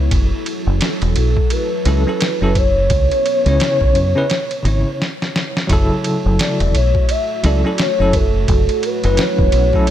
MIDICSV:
0, 0, Header, 1, 6, 480
1, 0, Start_track
1, 0, Key_signature, 3, "minor"
1, 0, Tempo, 697674
1, 76, Time_signature, 4, 2, 24, 8
1, 6816, End_track
2, 0, Start_track
2, 0, Title_t, "Soft synth lead"
2, 0, Program_c, 0, 80
2, 802, Note_on_c, 0, 69, 90
2, 1046, Note_on_c, 0, 71, 101
2, 1056, Note_off_c, 0, 69, 0
2, 1763, Note_on_c, 0, 73, 124
2, 1773, Note_off_c, 0, 71, 0
2, 3439, Note_off_c, 0, 73, 0
2, 4405, Note_on_c, 0, 74, 100
2, 4647, Note_on_c, 0, 73, 111
2, 4657, Note_off_c, 0, 74, 0
2, 4887, Note_on_c, 0, 76, 114
2, 4898, Note_off_c, 0, 73, 0
2, 5127, Note_on_c, 0, 74, 98
2, 5137, Note_off_c, 0, 76, 0
2, 5366, Note_on_c, 0, 73, 100
2, 5377, Note_off_c, 0, 74, 0
2, 5606, Note_on_c, 0, 69, 106
2, 5616, Note_off_c, 0, 73, 0
2, 6091, Note_on_c, 0, 71, 101
2, 6101, Note_off_c, 0, 69, 0
2, 6333, Note_on_c, 0, 73, 92
2, 6344, Note_off_c, 0, 71, 0
2, 6816, Note_off_c, 0, 73, 0
2, 6816, End_track
3, 0, Start_track
3, 0, Title_t, "String machine"
3, 0, Program_c, 1, 50
3, 0, Note_on_c, 1, 64, 78
3, 77, Note_on_c, 1, 69, 90
3, 78, Note_on_c, 1, 54, 83
3, 1977, Note_off_c, 1, 54, 0
3, 1977, Note_off_c, 1, 69, 0
3, 1996, Note_on_c, 1, 73, 88
3, 1997, Note_on_c, 1, 59, 87
3, 3409, Note_off_c, 1, 64, 0
3, 3422, Note_off_c, 1, 59, 0
3, 3422, Note_off_c, 1, 73, 0
3, 3915, Note_on_c, 1, 57, 83
3, 3915, Note_on_c, 1, 66, 72
3, 3916, Note_on_c, 1, 76, 92
3, 5816, Note_off_c, 1, 76, 0
3, 5838, Note_on_c, 1, 78, 89
3, 6816, Note_off_c, 1, 57, 0
3, 6816, Note_off_c, 1, 66, 0
3, 6816, Note_off_c, 1, 78, 0
3, 6816, End_track
4, 0, Start_track
4, 0, Title_t, "Tine electric piano"
4, 0, Program_c, 2, 4
4, 1276, Note_on_c, 2, 54, 83
4, 1282, Note_on_c, 2, 61, 71
4, 1287, Note_on_c, 2, 64, 73
4, 1295, Note_on_c, 2, 69, 84
4, 1385, Note_off_c, 2, 54, 0
4, 1388, Note_off_c, 2, 61, 0
4, 1391, Note_off_c, 2, 64, 0
4, 1395, Note_off_c, 2, 69, 0
4, 1421, Note_on_c, 2, 54, 74
4, 1427, Note_on_c, 2, 61, 66
4, 1432, Note_on_c, 2, 64, 65
4, 1437, Note_on_c, 2, 69, 80
4, 1496, Note_off_c, 2, 54, 0
4, 1499, Note_off_c, 2, 61, 0
4, 1501, Note_off_c, 2, 64, 0
4, 1504, Note_off_c, 2, 69, 0
4, 1658, Note_on_c, 2, 54, 91
4, 1665, Note_on_c, 2, 61, 80
4, 1669, Note_on_c, 2, 64, 82
4, 1676, Note_on_c, 2, 69, 95
4, 1793, Note_off_c, 2, 54, 0
4, 1796, Note_off_c, 2, 61, 0
4, 1798, Note_off_c, 2, 64, 0
4, 1802, Note_off_c, 2, 69, 0
4, 2377, Note_on_c, 2, 49, 82
4, 2385, Note_on_c, 2, 61, 76
4, 2390, Note_on_c, 2, 64, 74
4, 2396, Note_on_c, 2, 73, 90
4, 2824, Note_off_c, 2, 49, 0
4, 2828, Note_off_c, 2, 61, 0
4, 2830, Note_off_c, 2, 64, 0
4, 2833, Note_off_c, 2, 73, 0
4, 2857, Note_on_c, 2, 49, 93
4, 2862, Note_on_c, 2, 61, 85
4, 2869, Note_on_c, 2, 64, 87
4, 2875, Note_on_c, 2, 71, 103
4, 2934, Note_off_c, 2, 49, 0
4, 2936, Note_off_c, 2, 61, 0
4, 2940, Note_off_c, 2, 64, 0
4, 2943, Note_off_c, 2, 71, 0
4, 3185, Note_on_c, 2, 49, 72
4, 3200, Note_on_c, 2, 61, 63
4, 3211, Note_on_c, 2, 64, 66
4, 3221, Note_on_c, 2, 73, 75
4, 3431, Note_off_c, 2, 49, 0
4, 3438, Note_off_c, 2, 61, 0
4, 3443, Note_off_c, 2, 64, 0
4, 3448, Note_off_c, 2, 73, 0
4, 3903, Note_on_c, 2, 54, 98
4, 3917, Note_on_c, 2, 49, 90
4, 3927, Note_on_c, 2, 64, 88
4, 3940, Note_on_c, 2, 69, 110
4, 4629, Note_off_c, 2, 54, 0
4, 4636, Note_off_c, 2, 49, 0
4, 4641, Note_off_c, 2, 64, 0
4, 4648, Note_off_c, 2, 69, 0
4, 5115, Note_on_c, 2, 54, 81
4, 5123, Note_on_c, 2, 61, 73
4, 5127, Note_on_c, 2, 64, 73
4, 5132, Note_on_c, 2, 69, 88
4, 5225, Note_off_c, 2, 54, 0
4, 5228, Note_off_c, 2, 61, 0
4, 5231, Note_off_c, 2, 64, 0
4, 5233, Note_off_c, 2, 69, 0
4, 5257, Note_on_c, 2, 54, 71
4, 5263, Note_on_c, 2, 61, 65
4, 5268, Note_on_c, 2, 64, 69
4, 5275, Note_on_c, 2, 69, 79
4, 5334, Note_off_c, 2, 54, 0
4, 5337, Note_off_c, 2, 61, 0
4, 5340, Note_off_c, 2, 64, 0
4, 5343, Note_off_c, 2, 69, 0
4, 5498, Note_on_c, 2, 54, 95
4, 5503, Note_on_c, 2, 61, 83
4, 5508, Note_on_c, 2, 64, 83
4, 5515, Note_on_c, 2, 69, 105
4, 5632, Note_off_c, 2, 54, 0
4, 5635, Note_off_c, 2, 61, 0
4, 5637, Note_off_c, 2, 64, 0
4, 5641, Note_off_c, 2, 69, 0
4, 6218, Note_on_c, 2, 54, 78
4, 6222, Note_on_c, 2, 61, 75
4, 6227, Note_on_c, 2, 64, 77
4, 6232, Note_on_c, 2, 71, 91
4, 6664, Note_off_c, 2, 54, 0
4, 6666, Note_off_c, 2, 61, 0
4, 6669, Note_off_c, 2, 64, 0
4, 6671, Note_off_c, 2, 71, 0
4, 6695, Note_on_c, 2, 54, 98
4, 6704, Note_on_c, 2, 61, 84
4, 6710, Note_on_c, 2, 64, 94
4, 6713, Note_on_c, 2, 69, 111
4, 6773, Note_off_c, 2, 54, 0
4, 6778, Note_off_c, 2, 61, 0
4, 6780, Note_off_c, 2, 64, 0
4, 6782, Note_off_c, 2, 69, 0
4, 6816, End_track
5, 0, Start_track
5, 0, Title_t, "Fingered electric bass"
5, 0, Program_c, 3, 33
5, 81, Note_on_c, 3, 30, 86
5, 205, Note_off_c, 3, 30, 0
5, 461, Note_on_c, 3, 30, 95
5, 545, Note_off_c, 3, 30, 0
5, 702, Note_on_c, 3, 28, 96
5, 786, Note_off_c, 3, 28, 0
5, 799, Note_on_c, 3, 35, 83
5, 924, Note_off_c, 3, 35, 0
5, 1278, Note_on_c, 3, 37, 104
5, 1404, Note_off_c, 3, 37, 0
5, 1662, Note_on_c, 3, 30, 77
5, 1978, Note_off_c, 3, 30, 0
5, 1999, Note_on_c, 3, 37, 89
5, 2124, Note_off_c, 3, 37, 0
5, 2380, Note_on_c, 3, 37, 97
5, 2464, Note_off_c, 3, 37, 0
5, 2621, Note_on_c, 3, 35, 94
5, 2705, Note_off_c, 3, 35, 0
5, 2715, Note_on_c, 3, 42, 82
5, 2842, Note_off_c, 3, 42, 0
5, 3196, Note_on_c, 3, 32, 102
5, 3323, Note_off_c, 3, 32, 0
5, 3920, Note_on_c, 3, 30, 89
5, 4045, Note_off_c, 3, 30, 0
5, 4304, Note_on_c, 3, 30, 89
5, 4387, Note_off_c, 3, 30, 0
5, 4542, Note_on_c, 3, 28, 96
5, 4626, Note_off_c, 3, 28, 0
5, 4640, Note_on_c, 3, 35, 88
5, 4764, Note_off_c, 3, 35, 0
5, 5120, Note_on_c, 3, 37, 104
5, 5244, Note_off_c, 3, 37, 0
5, 5502, Note_on_c, 3, 30, 81
5, 5818, Note_off_c, 3, 30, 0
5, 5837, Note_on_c, 3, 30, 96
5, 5963, Note_off_c, 3, 30, 0
5, 6222, Note_on_c, 3, 30, 99
5, 6306, Note_off_c, 3, 30, 0
5, 6458, Note_on_c, 3, 28, 93
5, 6543, Note_off_c, 3, 28, 0
5, 6561, Note_on_c, 3, 35, 84
5, 6685, Note_off_c, 3, 35, 0
5, 6816, End_track
6, 0, Start_track
6, 0, Title_t, "Drums"
6, 77, Note_on_c, 9, 36, 107
6, 78, Note_on_c, 9, 51, 82
6, 146, Note_off_c, 9, 36, 0
6, 146, Note_off_c, 9, 51, 0
6, 318, Note_on_c, 9, 51, 68
6, 386, Note_off_c, 9, 51, 0
6, 555, Note_on_c, 9, 51, 88
6, 565, Note_on_c, 9, 38, 112
6, 624, Note_off_c, 9, 51, 0
6, 634, Note_off_c, 9, 38, 0
6, 700, Note_on_c, 9, 51, 44
6, 768, Note_off_c, 9, 51, 0
6, 795, Note_on_c, 9, 51, 62
6, 864, Note_off_c, 9, 51, 0
6, 940, Note_on_c, 9, 36, 91
6, 1009, Note_off_c, 9, 36, 0
6, 1034, Note_on_c, 9, 51, 85
6, 1103, Note_off_c, 9, 51, 0
6, 1276, Note_on_c, 9, 51, 61
6, 1344, Note_off_c, 9, 51, 0
6, 1517, Note_on_c, 9, 51, 91
6, 1527, Note_on_c, 9, 38, 114
6, 1586, Note_off_c, 9, 51, 0
6, 1596, Note_off_c, 9, 38, 0
6, 1756, Note_on_c, 9, 36, 99
6, 1757, Note_on_c, 9, 51, 68
6, 1825, Note_off_c, 9, 36, 0
6, 1826, Note_off_c, 9, 51, 0
6, 1994, Note_on_c, 9, 51, 85
6, 1996, Note_on_c, 9, 36, 104
6, 2063, Note_off_c, 9, 51, 0
6, 2065, Note_off_c, 9, 36, 0
6, 2143, Note_on_c, 9, 51, 39
6, 2211, Note_off_c, 9, 51, 0
6, 2240, Note_on_c, 9, 51, 68
6, 2309, Note_off_c, 9, 51, 0
6, 2380, Note_on_c, 9, 51, 42
6, 2449, Note_off_c, 9, 51, 0
6, 2477, Note_on_c, 9, 51, 89
6, 2487, Note_on_c, 9, 38, 117
6, 2546, Note_off_c, 9, 51, 0
6, 2556, Note_off_c, 9, 38, 0
6, 2620, Note_on_c, 9, 36, 90
6, 2689, Note_off_c, 9, 36, 0
6, 2718, Note_on_c, 9, 51, 53
6, 2787, Note_off_c, 9, 51, 0
6, 2956, Note_on_c, 9, 51, 70
6, 2966, Note_on_c, 9, 38, 98
6, 3025, Note_off_c, 9, 51, 0
6, 3035, Note_off_c, 9, 38, 0
6, 3102, Note_on_c, 9, 51, 38
6, 3170, Note_off_c, 9, 51, 0
6, 3201, Note_on_c, 9, 51, 65
6, 3269, Note_off_c, 9, 51, 0
6, 3452, Note_on_c, 9, 38, 62
6, 3521, Note_off_c, 9, 38, 0
6, 3593, Note_on_c, 9, 38, 59
6, 3661, Note_off_c, 9, 38, 0
6, 3687, Note_on_c, 9, 38, 81
6, 3755, Note_off_c, 9, 38, 0
6, 3830, Note_on_c, 9, 38, 76
6, 3899, Note_off_c, 9, 38, 0
6, 3917, Note_on_c, 9, 36, 104
6, 3918, Note_on_c, 9, 51, 80
6, 3986, Note_off_c, 9, 36, 0
6, 3987, Note_off_c, 9, 51, 0
6, 4158, Note_on_c, 9, 51, 69
6, 4227, Note_off_c, 9, 51, 0
6, 4399, Note_on_c, 9, 51, 89
6, 4408, Note_on_c, 9, 38, 122
6, 4467, Note_off_c, 9, 51, 0
6, 4477, Note_off_c, 9, 38, 0
6, 4543, Note_on_c, 9, 51, 45
6, 4612, Note_off_c, 9, 51, 0
6, 4641, Note_on_c, 9, 51, 65
6, 4710, Note_off_c, 9, 51, 0
6, 4780, Note_on_c, 9, 36, 100
6, 4849, Note_off_c, 9, 36, 0
6, 4876, Note_on_c, 9, 51, 84
6, 4945, Note_off_c, 9, 51, 0
6, 5116, Note_on_c, 9, 51, 65
6, 5185, Note_off_c, 9, 51, 0
6, 5353, Note_on_c, 9, 51, 88
6, 5363, Note_on_c, 9, 38, 114
6, 5422, Note_off_c, 9, 51, 0
6, 5432, Note_off_c, 9, 38, 0
6, 5595, Note_on_c, 9, 36, 94
6, 5596, Note_on_c, 9, 51, 72
6, 5664, Note_off_c, 9, 36, 0
6, 5664, Note_off_c, 9, 51, 0
6, 5835, Note_on_c, 9, 36, 105
6, 5835, Note_on_c, 9, 51, 81
6, 5904, Note_off_c, 9, 36, 0
6, 5904, Note_off_c, 9, 51, 0
6, 5978, Note_on_c, 9, 51, 42
6, 6047, Note_off_c, 9, 51, 0
6, 6074, Note_on_c, 9, 51, 64
6, 6143, Note_off_c, 9, 51, 0
6, 6217, Note_on_c, 9, 51, 42
6, 6285, Note_off_c, 9, 51, 0
6, 6311, Note_on_c, 9, 51, 89
6, 6321, Note_on_c, 9, 38, 119
6, 6380, Note_off_c, 9, 51, 0
6, 6390, Note_off_c, 9, 38, 0
6, 6457, Note_on_c, 9, 36, 96
6, 6525, Note_off_c, 9, 36, 0
6, 6551, Note_on_c, 9, 51, 68
6, 6620, Note_off_c, 9, 51, 0
6, 6695, Note_on_c, 9, 36, 97
6, 6764, Note_off_c, 9, 36, 0
6, 6791, Note_on_c, 9, 51, 78
6, 6816, Note_off_c, 9, 51, 0
6, 6816, End_track
0, 0, End_of_file